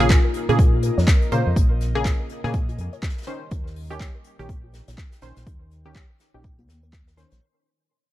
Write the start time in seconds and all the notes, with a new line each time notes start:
Already playing: A#1 A#3 C#4 F4 G#4 A#4 C5
0.00 C#3 A#3 G#4, closed hi-hat
0.10 A#4 D#5, kick, snare, clap, closed hi-hat
0.25 A#4
0.34 closed hi-hat
0.49 A#2 C#3 A#3 G#4, closed hi-hat
0.59 A#5, kick, closed hi-hat
0.73 F4
0.83 A#4, closed hi-hat
0.98 F2 C#5, snare
1.07 C#5, kick, snare, clap, closed hi-hat
1.22 closed hi-hat
1.32 A#2 C#3 A#3 C5, closed hi-hat
1.47 F2
1.56 A#1 G4, kick, closed hi-hat
1.71 A#4
1.81 snare, closed hi-hat
1.95 C#3 A#3 G#4
2.05 A#4, kick, snare, clap, closed hi-hat
2.20 A#4
2.29 closed hi-hat
2.44 A#2 C#3 A#3 G#4, snare
2.54 kick, closed hi-hat
2.69 F4, closed hi-hat
2.78 F2 A#4, closed hi-hat
2.93 C#5, closed hi-hat
3.03 C#5, kick, snare, clap, closed hi-hat
3.09 snare, closed hi-hat
3.17 snare, closed hi-hat
3.22 snare, closed hi-hat
3.27 D#3 C#4 D#4 C5 C#5, closed hi-hat
3.51 D#2, kick, closed hi-hat
3.66 A#4 G5, snare
3.76 open hi-hat
3.90 D#3 C#4 G4, closed hi-hat
4.00 A#4, kick, snare, clap, closed hi-hat
4.15 A#4
4.24 closed hi-hat
4.39 A#1 D#3 C#4 G4, closed hi-hat
4.49 A#5, kick, closed hi-hat
4.64 F4
4.73 A#4, snare, closed hi-hat
4.88 A#1 C#5, snare, closed hi-hat
4.97 C#5, kick, snare, clap, closed hi-hat
5.12 snare, closed hi-hat
5.22 A#1 D#3 C#4 C5, snare, closed hi-hat
5.36 A#1, snare, closed hi-hat
5.47 D#2, kick, closed hi-hat
5.61 A#4
5.71 snare, closed hi-hat
5.86 D#3 C#4 G4
5.95 A#4, kick, snare, clap, closed hi-hat
6.10 A#4
6.20 snare, closed hi-hat
6.34 A#1 D#3 C#4 G4
6.44 A#5, kick, closed hi-hat
6.59 F4, closed hi-hat, high conga
6.68 D#2 A#4, snare, closed hi-hat
6.83 A#4, closed hi-hat
6.92 A#4, kick, snare, clap
7.07 A#4, snare, closed hi-hat
7.17 D#3 C#4 A#4 C5, snare, closed hi-hat
7.31 A#1 A#4, snare, closed hi-hat